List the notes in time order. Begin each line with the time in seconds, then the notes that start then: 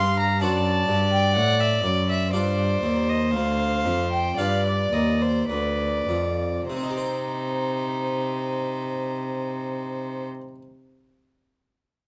Already playing: G2 D4 G#4 D5 F5 C6
0.19 A#5
0.41 F#2 D4 F#4 C5 D5 A5
0.88 G2
1.13 G5
1.36 A2 F#5
1.60 E5
1.83 F#2 D5
2.10 E5
2.33 G2 D4 F4 C5 D5
2.83 D#2
3.09 D#5
3.33 D2 F5
3.85 F2
4.12 G5
4.37 G2 D4 F4 B4 D5 F5
4.66 D5
4.92 D#2 D#5
5.22 C5
5.48 D2 B4 D5
6.08 F2
6.69 C3 D#4 C5
6.77 C4
6.83 D#4
6.91 G4
6.98 C5
7.04 G5